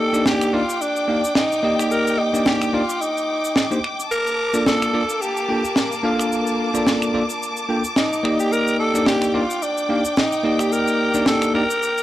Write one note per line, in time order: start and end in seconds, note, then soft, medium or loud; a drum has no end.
0.00 0.10 G4 medium
0.00 0.26 A4 medium
0.00 0.10 D#5 loud
0.00 4.07 G5 medium
0.00 12.03 D6 medium
0.13 0.50 A#3 medium
0.13 0.50 D4 medium
0.13 0.51 D#4 medium
0.13 0.51 G4 medium
0.13 0.51 D5 medium
0.13 cabasa medium
0.26 0.55 G4 loud
0.26 snare loud
0.26 cabasa medium
0.41 finger snap medium
0.41 cabasa soft
0.53 0.61 A#3 medium
0.53 0.61 D4 medium
0.53 0.61 D#4 medium
0.53 0.83 F4 medium
0.53 0.61 G4 medium
0.53 0.62 D5 medium
0.69 cabasa medium
0.81 1.35 D4 medium
0.81 cabasa medium
0.96 cabasa soft
1.08 1.21 A#3 medium
1.08 1.21 D4 medium
1.08 1.21 D#4 medium
1.08 1.21 G4 medium
1.08 1.21 F5 medium
1.24 cabasa medium
1.35 1.76 D#4 medium
1.35 snare loud
1.35 cabasa medium
1.52 cabasa soft
1.63 2.30 A#3 medium
1.63 2.30 D#4 medium
1.63 2.30 G4 medium
1.63 2.30 D5 medium
1.63 2.31 D#5 medium
1.79 1.93 G4 medium
1.79 finger snap medium
1.79 cabasa medium
1.91 2.20 A#4 medium
1.91 cabasa medium
2.07 cabasa soft
2.19 2.45 D#4 medium
2.33 2.71 A#3 medium
2.33 2.71 D4 medium
2.33 2.71 D#4 medium
2.33 2.71 G4 medium
2.33 2.71 D5 medium
2.33 cabasa medium
2.46 2.75 G4 medium
2.46 snare loud
2.46 cabasa medium
2.62 finger snap medium
2.62 cabasa soft
2.73 2.81 A#3 medium
2.73 2.82 D4 medium
2.73 2.82 D#4 medium
2.73 3.03 F4 medium
2.73 2.82 G4 medium
2.73 2.82 D5 medium
2.90 cabasa medium
3.01 3.84 D#4 medium
3.01 cabasa medium
3.17 cabasa soft
3.44 cabasa medium
3.56 snare loud
3.56 cabasa medium
3.71 3.78 A#3 medium
3.71 3.78 D4 medium
3.71 3.78 D#4 medium
3.71 3.78 G4 medium
3.71 3.78 C5 medium
3.71 cabasa soft
3.84 finger snap medium
4.00 cabasa medium
4.11 8.20 A#3 medium
4.11 4.63 A#4 loud
4.11 8.20 A5 medium
4.11 cabasa medium
4.27 cabasa soft
4.53 4.91 A#3 medium
4.53 4.91 D4 medium
4.53 4.91 F4 medium
4.53 4.91 A4 medium
4.53 4.91 D5 medium
4.53 cabasa medium
4.66 5.23 A4 loud
4.66 snare loud
4.66 cabasa medium
4.82 finger snap medium
4.82 cabasa soft
4.93 5.02 A#3 medium
4.93 5.02 D4 medium
4.93 5.02 F4 medium
4.93 5.02 A4 medium
4.93 5.02 D5 medium
5.10 cabasa medium
5.21 6.04 G4 medium
5.21 cabasa medium
5.37 cabasa soft
5.49 5.61 A#3 medium
5.49 5.62 D4 medium
5.49 5.62 F4 medium
5.49 5.62 A4 medium
5.49 5.62 G5 medium
5.65 cabasa medium
5.76 snare medium
5.76 cabasa medium
5.92 cabasa soft
6.03 6.70 A#3 medium
6.03 6.70 D4 medium
6.03 6.71 F4 medium
6.03 6.71 A4 medium
6.03 6.71 F5 medium
6.20 finger snap medium
6.20 cabasa medium
6.32 cabasa medium
6.47 cabasa soft
6.74 7.11 A#3 medium
6.74 7.11 D4 medium
6.74 7.11 F4 medium
6.74 7.11 A4 medium
6.74 7.12 D5 medium
6.74 cabasa medium
6.87 snare loud
6.87 cabasa medium
7.02 finger snap medium
7.02 cabasa soft
7.14 7.22 A#3 medium
7.14 7.22 D4 medium
7.14 7.22 F4 medium
7.14 7.22 A4 medium
7.14 7.22 D5 medium
7.30 cabasa medium
7.43 cabasa medium
7.57 cabasa soft
7.69 7.82 A#3 medium
7.69 7.82 D4 medium
7.69 7.82 F4 medium
7.69 7.82 A4 medium
7.69 7.82 G5 medium
7.84 cabasa medium
7.96 8.37 D#4 medium
7.96 snare medium
7.96 cabasa medium
8.13 cabasa soft
8.23 8.90 A#3 medium
8.23 8.91 D#4 medium
8.23 8.91 G4 medium
8.23 8.91 D5 medium
8.23 8.91 D#5 loud
8.23 12.03 G5 medium
8.23 finger snap medium
8.40 8.54 G4 medium
8.40 cabasa medium
8.52 8.79 A#4 loud
8.52 cabasa medium
8.68 cabasa soft
8.79 9.05 A4 medium
8.94 9.31 A#3 medium
8.94 9.31 D4 medium
8.94 9.31 D#4 medium
8.94 9.31 G4 medium
8.94 9.32 D5 medium
8.94 cabasa medium
9.06 9.36 G4 loud
9.06 snare loud
9.06 cabasa medium
9.22 finger snap medium
9.22 cabasa soft
9.34 9.42 A#3 medium
9.34 9.42 D4 medium
9.34 9.42 D#4 medium
9.34 9.64 F4 medium
9.34 9.42 G4 medium
9.34 9.42 D5 loud
9.50 cabasa medium
9.62 10.17 D4 medium
9.62 cabasa medium
9.78 cabasa soft
9.89 10.02 A#3 medium
9.89 10.02 D4 medium
9.89 10.02 D#4 medium
9.89 10.02 G4 medium
9.89 10.02 F5 medium
10.05 cabasa medium
10.17 10.62 D#4 medium
10.17 snare loud
10.17 cabasa medium
10.32 cabasa soft
10.43 11.10 A#3 medium
10.43 11.11 D#4 medium
10.43 11.11 G4 medium
10.43 11.11 D5 medium
10.43 11.11 D#5 loud
10.59 10.74 G4 medium
10.59 finger snap medium
10.59 cabasa medium
10.72 11.27 A#4 loud
10.72 cabasa medium
10.88 cabasa soft
11.14 11.51 A#3 medium
11.14 11.51 D4 medium
11.14 11.52 D#4 medium
11.14 11.52 G4 medium
11.14 11.52 D5 medium
11.14 cabasa medium
11.26 11.53 A4 loud
11.26 snare loud
11.26 cabasa medium
11.42 finger snap medium
11.42 cabasa soft
11.54 11.62 A#3 medium
11.54 11.62 D4 medium
11.54 11.62 D#4 medium
11.54 11.63 G4 medium
11.54 12.03 A#4 loud
11.54 11.63 D5 medium
11.70 cabasa medium
11.83 cabasa medium
11.98 cabasa soft